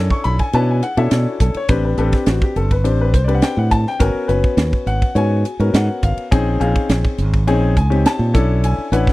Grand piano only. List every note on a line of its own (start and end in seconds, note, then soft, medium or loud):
0.00 0.46 C#4 medium
0.00 0.46 D4 medium
0.00 0.46 E4 medium
0.00 0.46 A4 loud
0.11 0.25 C#6 medium
0.24 0.39 B5 loud
0.40 0.53 G#5 medium
0.54 0.80 C#4 medium
0.54 0.80 D4 medium
0.54 0.80 E4 medium
0.54 0.80 B4 medium
0.54 0.68 A5 medium
0.70 0.83 G#5 medium
0.82 0.90 E4 soft
0.82 0.90 G#4 soft
0.82 0.97 F#5 medium
0.97 1.63 C#4 medium
0.97 1.63 D4 medium
0.97 1.63 E4 medium
0.97 1.39 A4 medium
0.97 1.11 E5 medium
1.12 1.26 D5 medium
1.28 1.41 F#4 soft
1.41 1.55 A4 medium
1.57 1.70 C#5 medium
1.69 1.96 C4 medium
1.69 1.96 D4 medium
1.69 1.96 G4 medium
1.69 1.83 B4 medium
1.69 1.84 C5 medium
1.85 1.97 B4 medium
1.98 2.78 C4 medium
1.98 2.78 D4 medium
1.98 2.13 G4 medium
1.98 2.13 A4 medium
1.98 2.71 B4 medium
2.14 2.27 G4 medium
2.29 2.42 F#4 medium
2.43 2.56 G4 medium
2.56 2.71 A4 medium
2.72 2.85 B4 medium
2.84 3.11 C4 medium
2.84 3.11 D4 medium
2.84 3.11 G4 medium
2.84 3.11 C5 medium
3.01 3.14 B4 medium
3.13 3.21 G4 soft
3.13 3.20 A4 soft
3.13 3.23 C5 medium
3.24 3.94 C4 medium
3.24 3.94 D4 medium
3.24 3.94 G4 medium
3.24 3.94 B4 medium
3.24 3.33 D5 medium
3.35 3.43 F#5 medium
3.43 3.57 G5 medium
3.58 3.72 F#5 medium
3.71 3.86 A5 medium
3.88 4.01 G5 medium
3.99 4.27 B3 medium
3.99 4.26 C#4 medium
3.99 4.27 F#4 medium
3.99 4.27 A#4 loud
3.99 4.55 G#5 medium
4.28 5.08 B3 medium
4.28 5.08 C#4 medium
4.28 5.08 F#4 medium
4.28 5.08 B4 medium
4.87 5.15 F#5 medium
5.15 5.42 B3 medium
5.15 5.42 C#4 medium
5.15 5.42 F#4 medium
5.15 5.42 C#5 medium
5.15 5.71 G#5 medium
5.45 5.52 F#4 soft
5.45 5.52 G#4 soft
5.60 6.26 B3 medium
5.60 6.26 C#4 medium
5.60 6.26 F#4 medium
5.60 6.26 A#4 medium
5.76 6.03 F#5 medium
6.04 6.57 F5 medium
6.31 6.58 C4 medium
6.31 6.58 C#4 medium
6.31 6.58 D#4 medium
6.31 6.58 G#4 loud
6.60 7.40 C4 medium
6.60 7.40 C#4 medium
6.60 7.40 D#4 medium
6.60 7.40 G#4 medium
6.60 6.89 F5 medium
7.47 7.74 C4 medium
7.47 7.74 C#4 medium
7.47 7.74 D#4 medium
7.47 7.74 G#4 loud
7.77 7.84 D#4 soft
7.77 7.84 G#4 soft
7.77 8.05 G#5 medium
7.90 8.34 C4 medium
7.90 8.32 C#4 medium
7.90 8.34 D#4 medium
7.90 8.34 G4 medium
8.06 8.60 A5 medium
8.34 8.87 C#4 medium
8.34 8.87 D4 medium
8.34 8.87 E4 medium
8.34 8.87 A4 medium
8.64 8.92 G#5 medium
8.92 9.13 C#4 medium
8.92 9.13 D4 medium
8.92 9.13 E4 medium
8.92 9.13 B4 medium
8.92 9.13 F#5 medium